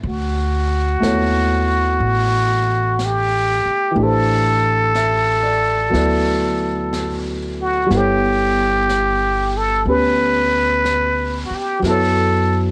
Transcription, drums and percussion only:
0.05 brush sweep
1.03 brush sweep, snare, hi-hat pedal
2.00 brush sweep
2.99 brush sweep, snare, hi-hat pedal
3.97 brush sweep
4.95 brush sweep, snare, hi-hat pedal
5.93 brush sweep, snare
6.93 brush sweep, snare, hi-hat pedal
7.91 brush sweep, snare
8.89 brush sweep, snare, hi-hat pedal
9.88 brush sweep
10.85 brush sweep, snare, hi-hat pedal
11.84 brush sweep, snare

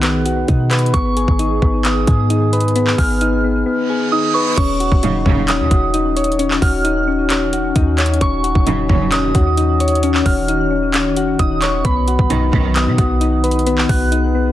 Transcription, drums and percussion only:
0.03 clap, closed hi-hat
0.26 closed hi-hat
0.48 kick, closed hi-hat
0.71 clap, closed hi-hat
0.79 closed hi-hat
0.86 closed hi-hat
0.94 kick, closed hi-hat
1.17 closed hi-hat
1.28 kick
1.39 closed hi-hat
1.62 kick
1.85 clap, closed hi-hat
2.07 kick, closed hi-hat
2.30 closed hi-hat
2.53 closed hi-hat
2.60 closed hi-hat
2.68 closed hi-hat
2.76 closed hi-hat
2.87 clap
2.98 kick, open hi-hat
3.21 closed hi-hat
4.57 kick, closed hi-hat, crash
4.80 closed hi-hat
4.92 kick
5.03 closed hi-hat
5.26 kick
5.48 clap, closed hi-hat
5.71 kick, closed hi-hat
5.94 closed hi-hat
6.17 closed hi-hat
6.24 closed hi-hat
6.32 closed hi-hat
6.39 closed hi-hat
6.51 clap
6.62 kick, open hi-hat
6.85 closed hi-hat
7.30 clap, closed hi-hat
7.53 closed hi-hat
7.76 kick, closed hi-hat
7.98 clap, closed hi-hat
8.06 closed hi-hat
8.14 closed hi-hat
8.21 kick, closed hi-hat
8.44 closed hi-hat
8.55 kick
8.67 closed hi-hat
8.89 kick
9.12 clap, closed hi-hat
9.35 kick, closed hi-hat
9.57 closed hi-hat
9.80 closed hi-hat
9.88 closed hi-hat
9.95 closed hi-hat
10.03 closed hi-hat
10.14 clap
10.26 kick, open hi-hat
10.48 closed hi-hat
10.94 clap, closed hi-hat
11.17 closed hi-hat
11.39 kick, closed hi-hat
11.62 clap, closed hi-hat
11.85 kick, closed hi-hat
12.08 closed hi-hat
12.19 kick
12.30 closed hi-hat
12.53 kick
12.76 clap, closed hi-hat
12.98 kick, closed hi-hat
13.21 closed hi-hat
13.44 closed hi-hat
13.51 closed hi-hat
13.59 closed hi-hat
13.67 closed hi-hat
13.78 clap
13.89 kick, open hi-hat
14.12 closed hi-hat

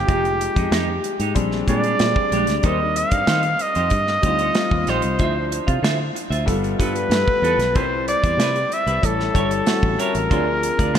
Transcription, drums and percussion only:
0.09 kick, closed hi-hat
0.25 closed hi-hat
0.41 closed hi-hat
0.56 kick, closed hi-hat
0.72 snare, closed hi-hat
1.04 closed hi-hat
1.20 closed hi-hat
1.36 kick, closed hi-hat
1.52 snare
1.68 kick, closed hi-hat
1.84 closed hi-hat
1.99 snare, closed hi-hat
2.16 kick
2.32 closed hi-hat
2.47 snare, closed hi-hat
2.63 kick, closed hi-hat
2.96 closed hi-hat
3.11 kick, closed hi-hat
3.27 snare, closed hi-hat
3.43 closed hi-hat
3.59 closed hi-hat
3.75 closed hi-hat
3.90 kick, closed hi-hat
4.07 snare
4.23 kick, closed hi-hat
4.39 closed hi-hat
4.55 snare, closed hi-hat
4.71 kick
4.87 snare, closed hi-hat
5.02 closed hi-hat
5.19 kick, closed hi-hat
5.52 closed hi-hat
5.68 kick, closed hi-hat
5.84 snare, closed hi-hat
6.16 closed hi-hat
6.32 closed hi-hat
6.48 kick, closed hi-hat
6.64 closed hi-hat
6.80 kick, closed hi-hat
6.96 closed hi-hat
7.11 snare, closed hi-hat
7.28 kick
7.44 closed hi-hat
7.60 snare, closed hi-hat
7.75 kick, closed hi-hat
8.08 closed hi-hat
8.24 kick, closed hi-hat
8.40 snare, closed hi-hat
8.56 closed hi-hat
8.72 closed hi-hat
8.87 closed hi-hat
9.03 kick, closed hi-hat
9.20 snare
9.35 kick, closed hi-hat
9.51 closed hi-hat
9.67 snare, closed hi-hat
9.83 kick
9.99 closed hi-hat
10.15 closed hi-hat
10.31 kick, closed hi-hat
10.63 closed hi-hat
10.79 kick, closed hi-hat
10.95 snare, closed hi-hat

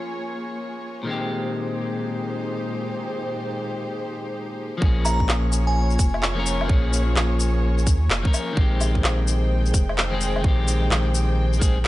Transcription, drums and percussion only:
4.82 kick
5.05 cabasa, low woodblock, shaker
5.20 kick
5.29 clap
5.52 cabasa, shaker
5.90 shaker
5.99 kick, cabasa, shaker
6.14 low woodblock
6.23 clap
6.46 cabasa, shaker
6.61 low woodblock
6.69 kick
6.93 cabasa, shaker
7.16 clap
7.40 cabasa, shaker
7.78 shaker
7.87 kick, cabasa, shaker
8.10 clap
8.25 kick
8.34 cabasa, low woodblock, shaker
8.57 kick
8.81 cabasa, low woodblock, shaker
8.95 kick
9.04 clap
9.28 cabasa, shaker
9.66 shaker
9.74 kick, cabasa, shaker
9.89 low woodblock
9.98 clap
10.21 cabasa, shaker
10.36 low woodblock
10.44 kick
10.68 cabasa, shaker
10.91 clap
11.15 cabasa, shaker
11.53 shaker
11.62 kick, cabasa, shaker

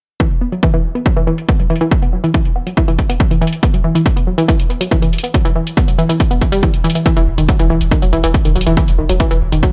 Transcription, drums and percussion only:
0.20 kick
0.31 closed hi-hat
0.52 closed hi-hat
0.63 kick, closed hi-hat
0.74 closed hi-hat
0.95 closed hi-hat
1.06 kick, closed hi-hat
1.17 closed hi-hat
1.27 closed hi-hat
1.38 closed hi-hat
1.49 kick, closed hi-hat
1.60 closed hi-hat
1.70 closed hi-hat
1.76 closed hi-hat
1.81 closed hi-hat
1.91 kick, closed hi-hat
2.02 closed hi-hat
2.24 closed hi-hat
2.34 kick, closed hi-hat
2.45 closed hi-hat
2.67 closed hi-hat
2.77 kick, closed hi-hat
2.88 closed hi-hat
2.99 kick, closed hi-hat
3.10 closed hi-hat
3.20 kick, closed hi-hat
3.31 closed hi-hat
3.42 closed hi-hat
3.47 closed hi-hat
3.53 closed hi-hat
3.63 kick, closed hi-hat
3.74 closed hi-hat
3.95 closed hi-hat
4.06 kick, closed hi-hat
4.17 closed hi-hat
4.38 closed hi-hat
4.49 kick, closed hi-hat
4.60 closed hi-hat
4.70 closed hi-hat
4.81 closed hi-hat
4.91 kick, closed hi-hat
5.02 closed hi-hat
5.13 closed hi-hat
5.18 closed hi-hat
5.24 closed hi-hat
5.34 kick, closed hi-hat
5.45 closed hi-hat
5.67 closed hi-hat
5.77 kick, closed hi-hat
5.88 closed hi-hat
5.99 closed hi-hat
6.10 closed hi-hat
6.20 kick, closed hi-hat
6.31 closed hi-hat
6.41 kick, closed hi-hat
6.52 closed hi-hat
6.63 kick, closed hi-hat
6.74 closed hi-hat
6.84 closed hi-hat
6.90 closed hi-hat
6.95 closed hi-hat
7.06 kick, closed hi-hat
7.17 closed hi-hat
7.38 closed hi-hat
7.49 kick, closed hi-hat
7.59 closed hi-hat
7.81 closed hi-hat
7.91 kick, closed hi-hat
8.02 closed hi-hat
8.13 closed hi-hat
8.24 closed hi-hat
8.34 kick, closed hi-hat
8.45 closed hi-hat
8.56 closed hi-hat
8.61 closed hi-hat
8.67 closed hi-hat
8.77 kick, closed hi-hat
8.88 closed hi-hat
9.09 closed hi-hat
9.20 kick, closed hi-hat
9.31 closed hi-hat
9.52 closed hi-hat
9.63 kick, closed hi-hat

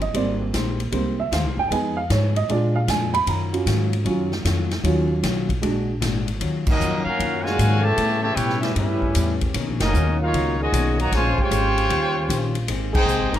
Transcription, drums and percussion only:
0.01 ride
0.14 kick, ride
0.54 kick, snare, hi-hat pedal, ride
0.80 ride
0.92 kick, ride
1.32 kick, snare, hi-hat pedal, ride
1.71 kick, ride
2.10 kick, snare, hi-hat pedal, ride
2.36 ride
2.49 kick, ride
2.88 kick, snare, hi-hat pedal, ride
3.14 ride
3.27 kick, ride
3.54 ride
3.66 kick, snare, hi-hat pedal, ride
3.93 ride
4.05 kick, ride
4.32 snare
4.45 kick, snare, hi-hat pedal, ride
4.71 snare, ride
4.84 kick, ride
5.23 kick, snare, hi-hat pedal, ride
5.49 kick, ride
5.63 ride
6.02 kick, snare, hi-hat pedal, ride
6.28 ride
6.41 kick, ride
6.67 kick, crash
6.80 hi-hat pedal
7.20 kick, ride
7.46 snare
7.59 kick, hi-hat pedal, ride
7.98 kick, ride
8.37 kick, hi-hat pedal, ride
8.50 snare
8.63 snare, ride
8.76 kick, ride
9.02 kick
9.15 kick, hi-hat pedal, ride
9.41 kick, ride
9.54 kick, ride
9.80 snare, ride
9.94 hi-hat pedal
10.34 kick, ride
10.73 kick, hi-hat pedal, ride
10.99 ride
11.12 kick, snare, ride
11.38 kick
11.51 hi-hat pedal, ride
11.78 ride
11.90 kick, ride
12.30 kick, hi-hat pedal, ride
12.55 ride
12.68 kick, ride
12.95 kick, crash
13.08 hi-hat pedal
13.34 ride

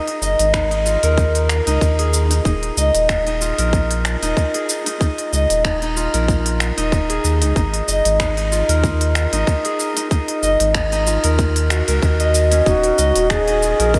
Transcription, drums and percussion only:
0.07 open hi-hat
0.22 shaker
0.39 open hi-hat, shaker
0.54 finger snap, kick, shaker
0.71 open hi-hat
0.86 shaker
1.03 open hi-hat, shaker
1.17 kick, shaker
1.35 open hi-hat, shaker
1.49 finger snap, shaker
1.67 open hi-hat, shaker
1.81 kick, shaker
1.99 open hi-hat
2.14 shaker
2.31 open hi-hat, shaker
2.45 kick, shaker
2.63 open hi-hat
2.78 shaker
2.95 open hi-hat, shaker
3.09 finger snap, kick, shaker
3.27 open hi-hat
3.41 shaker
3.58 open hi-hat, shaker
3.73 kick, shaker
3.91 open hi-hat
4.05 finger snap, shaker
4.23 open hi-hat, shaker
4.37 kick, shaker
4.54 open hi-hat
4.69 shaker
4.86 open hi-hat, shaker
5.01 kick, shaker
5.18 open hi-hat
5.33 shaker
5.50 open hi-hat, shaker
5.65 finger snap, kick, shaker
5.82 open hi-hat
5.97 shaker
6.14 open hi-hat, shaker
6.28 kick, shaker
6.46 open hi-hat
6.60 finger snap, shaker
6.78 open hi-hat, shaker
6.92 kick, shaker
7.10 open hi-hat
7.25 shaker
7.42 open hi-hat, shaker
7.56 kick, shaker
7.74 open hi-hat
7.88 shaker
8.05 open hi-hat, shaker
8.20 finger snap, kick, shaker
8.37 open hi-hat
8.52 shaker
8.69 open hi-hat, shaker
8.84 kick, shaker
9.01 open hi-hat
9.15 finger snap, shaker
9.33 open hi-hat, shaker
9.47 kick, shaker
9.65 open hi-hat
9.80 shaker
9.97 open hi-hat, shaker
10.11 kick, shaker
10.28 open hi-hat
10.43 shaker
10.60 open hi-hat, shaker
10.75 finger snap, kick, shaker
10.92 open hi-hat, shaker
11.07 shaker
11.24 open hi-hat, shaker
11.39 kick, shaker
11.56 open hi-hat, shaker
11.70 finger snap, shaker
11.88 open hi-hat, shaker
12.02 kick, shaker
12.20 open hi-hat
12.35 shaker
12.52 open hi-hat, shaker
12.66 kick, shaker
12.83 open hi-hat
12.98 shaker
13.16 open hi-hat, shaker
13.30 finger snap, kick, shaker
13.48 open hi-hat
13.63 shaker
13.80 open hi-hat, shaker
13.94 kick, shaker

